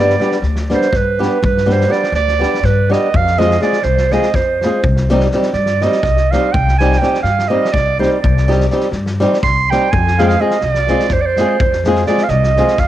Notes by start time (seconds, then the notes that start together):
Already playing: G2 G3 D5
0.00 B3 D4 G4
0.09 snare
0.19 G3 B3 D4 G4, snare
0.31 snare
0.42 D2, snare
0.56 snare
0.70 G3 B3 D4 G4 C5, snare
0.81 snare
0.93 G2 B4, kick, snare
1.19 G3 B3 D4 G4, snare
1.42 G2 B4, kick
1.57 snare
1.66 G3 B3 D4 G4, snare
1.72 C5
1.81 snare
1.88 G3 B3 D4 G4
1.92 D5, snare
2.03 snare
2.12 D2 D5, snare
2.28 snare
2.39 G3 B3 D4 G4, snare
2.54 snare
2.63 G2 B4, kick, snare
2.90 G3 B3 D4 G4 D#5, snare
3.14 F2 F5, kick
3.27 snare
3.38 G#3 C4 F4 G#4 D#5, snare
3.51 snare
3.60 G#3 C4 F4 G#4 D5, snare
3.72 snare
3.82 C2 C5, snare
3.97 snare
4.11 G#3 C4 F4 G#4 D#5, snare
4.22 snare
4.34 F2 C5, kick, snare
4.61 G#3 C4 F4, snare
4.66 G#4
4.83 C2, kick
4.97 snare
5.09 G3 C4 D#4 G4, snare
5.20 snare
5.31 G3 C4 D#4 G4, snare
5.42 snare
5.53 G2 D5, snare
5.66 snare
5.81 G3 C4 D#4 G4 D#5, snare
5.92 snare
6.03 C2, kick, snare
6.17 snare
6.31 G3 C4 D#4 G4 F5, snare
6.53 C2 G5, kick
6.68 snare
6.78 G3 C4 D#4 G#5, snare
6.82 G4
6.92 snare
6.98 G3 C4 G5
7.03 D#4 G4, snare
7.14 snare
7.22 G2 F5, snare
7.39 snare
7.48 G3 C4 D#4 G4 D#5
7.64 snare
7.72 C2 D5, kick, snare
7.99 G3 C4 D#4 G4 C5, snare
8.22 C2 D5, kick
8.37 snare
8.48 G3 C4 D#4 G4, snare
8.60 snare
8.71 G3 C4 D#4 G4, snare
8.80 snare
8.92 G2, snare
9.06 snare
9.20 G3 C4 D#4 G4, snare
9.33 snare
9.43 C2 C6, kick, snare
9.70 G3 C4 D#4 G4 G5, snare
9.91 F2 G#5, kick
10.07 snare
10.19 G#3 C4 F4 G#4 F5 G5, snare
10.28 F5, snare
10.40 G#3 C4 F4 G#4 D#5
10.50 snare
10.61 C2 D5, snare
10.74 snare
10.87 G#3 C4 F4 G#4, snare
10.99 snare
11.09 F2, kick, snare
11.13 C5
11.21 D5
11.26 C5
11.36 G#3 C4 F4 G#4, snare
11.60 F2, kick
11.73 snare
11.84 G#3 C4 F4 G#4, snare
11.95 snare
12.06 G#3 C4 F4 G#4 D5, snare
12.17 snare
12.23 F5
12.28 C2 D#5, snare
12.43 snare
12.56 G#3 C4 F4 G#4, snare
12.67 snare
12.77 F2 F5, kick, snare